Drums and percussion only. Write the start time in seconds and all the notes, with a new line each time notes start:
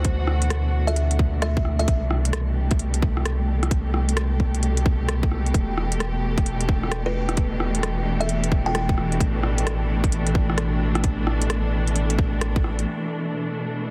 0.05 kick, closed hi-hat
0.27 cross-stick
0.42 closed hi-hat
0.50 cross-stick, closed hi-hat
0.88 closed hi-hat
0.96 closed hi-hat
1.11 closed hi-hat
1.19 kick
1.42 cross-stick, closed hi-hat
1.57 kick
1.65 cross-stick
1.80 closed hi-hat
1.88 kick, closed hi-hat
2.11 cross-stick
2.25 closed hi-hat
2.33 cross-stick, closed hi-hat
2.71 kick, closed hi-hat
2.79 closed hi-hat
2.94 closed hi-hat
3.02 kick
3.17 cross-stick
3.25 cross-stick, closed hi-hat
3.63 cross-stick, closed hi-hat
3.71 kick, closed hi-hat
3.94 cross-stick
4.09 closed hi-hat
4.17 cross-stick, closed hi-hat
4.40 kick
4.55 closed hi-hat
4.63 closed hi-hat
4.77 closed hi-hat
4.86 kick
5.09 cross-stick, closed hi-hat
5.23 kick
5.31 cross-stick
5.46 closed hi-hat
5.54 kick, closed hi-hat
5.78 cross-stick
5.92 closed hi-hat
6.00 cross-stick, closed hi-hat
6.38 kick, closed hi-hat
6.46 closed hi-hat
6.61 closed hi-hat
6.69 kick
6.83 cross-stick
6.92 cross-stick, closed hi-hat
7.29 cross-stick, closed hi-hat
7.37 kick, closed hi-hat
7.60 cross-stick
7.75 closed hi-hat
7.83 cross-stick, closed hi-hat
8.21 closed hi-hat
8.29 closed hi-hat
8.44 closed hi-hat
8.52 kick
8.75 cross-stick, closed hi-hat
8.89 kick
8.98 cross-stick
9.12 closed hi-hat
9.20 kick, closed hi-hat
9.43 cross-stick
9.58 closed hi-hat
9.67 cross-stick, closed hi-hat
10.04 kick, closed hi-hat
10.12 closed hi-hat
10.27 closed hi-hat
10.35 kick
10.50 cross-stick
10.58 cross-stick, closed hi-hat
10.95 cross-stick, closed hi-hat
11.04 kick, closed hi-hat
11.27 cross-stick
11.42 closed hi-hat
11.50 cross-stick, closed hi-hat
11.87 closed hi-hat
11.96 closed hi-hat
12.10 closed hi-hat
12.19 kick
12.41 cross-stick, closed hi-hat
12.56 kick
12.64 cross-stick
12.79 closed hi-hat